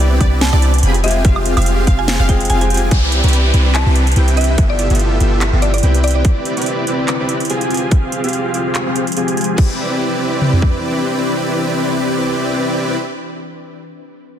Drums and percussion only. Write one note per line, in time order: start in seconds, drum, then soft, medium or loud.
0.21 kick medium
0.21 closed hi-hat medium
0.41 snare loud
0.41 closed hi-hat medium
0.62 closed hi-hat medium
0.74 closed hi-hat medium
0.78 closed hi-hat medium
0.83 closed hi-hat medium
0.94 closed hi-hat medium
1.04 closed hi-hat medium
1.08 closed hi-hat medium
1.11 closed hi-hat medium
1.25 kick loud
1.25 closed hi-hat medium
1.36 high woodblock medium
1.45 closed hi-hat medium
1.57 closed hi-hat medium
1.57 high woodblock medium
1.62 closed hi-hat medium
1.66 closed hi-hat medium
1.87 kick medium
1.87 closed hi-hat medium
2.08 snare loud
2.08 closed hi-hat medium
2.29 kick medium
2.29 closed hi-hat medium
2.40 closed hi-hat medium
2.45 closed hi-hat medium
2.50 closed hi-hat medium
2.61 closed hi-hat medium
2.70 closed hi-hat medium
2.74 closed hi-hat medium
2.77 closed hi-hat medium
2.91 kick loud
2.91 closed hi-hat medium
3.12 closed hi-hat medium
3.24 closed hi-hat soft
3.28 closed hi-hat medium
3.33 closed hi-hat medium
3.54 closed hi-hat medium
3.75 clap loud
3.75 closed hi-hat medium
3.95 closed hi-hat medium
4.07 closed hi-hat soft
4.12 closed hi-hat medium
4.16 closed hi-hat medium
4.28 closed hi-hat medium
4.37 closed hi-hat medium
4.41 closed hi-hat medium
4.44 closed hi-hat medium
4.58 kick loud
4.58 closed hi-hat medium
4.79 closed hi-hat medium
4.90 closed hi-hat soft
4.95 closed hi-hat medium
4.99 closed hi-hat medium
5.20 closed hi-hat medium
5.41 clap loud
5.41 closed hi-hat medium
5.62 closed hi-hat medium
5.74 closed hi-hat soft
5.78 closed hi-hat medium
5.83 closed hi-hat medium
5.94 closed hi-hat medium
6.04 closed hi-hat soft
6.08 closed hi-hat medium
6.11 closed hi-hat medium
6.25 kick loud
6.25 closed hi-hat medium
6.45 closed hi-hat medium
6.57 closed hi-hat soft
6.62 closed hi-hat medium
6.66 closed hi-hat medium
6.87 closed hi-hat medium
7.08 clap medium
7.08 closed hi-hat medium
7.29 closed hi-hat medium
7.40 closed hi-hat soft
7.45 closed hi-hat medium
7.50 closed hi-hat medium
7.61 closed hi-hat medium
7.71 closed hi-hat soft
7.74 closed hi-hat medium
7.77 closed hi-hat medium
7.91 kick loud
7.91 closed hi-hat medium
8.12 closed hi-hat medium
8.24 closed hi-hat soft
8.28 closed hi-hat medium
8.33 closed hi-hat medium
8.54 closed hi-hat medium
8.75 clap medium
8.75 closed hi-hat medium
8.96 closed hi-hat medium
9.07 closed hi-hat soft
9.12 closed hi-hat medium
9.17 closed hi-hat medium
9.28 closed hi-hat medium
9.37 closed hi-hat soft
9.41 closed hi-hat medium
9.44 closed hi-hat medium
9.58 kick loud
9.58 crash medium
10.41 mid tom medium
10.53 floor tom medium
10.62 kick medium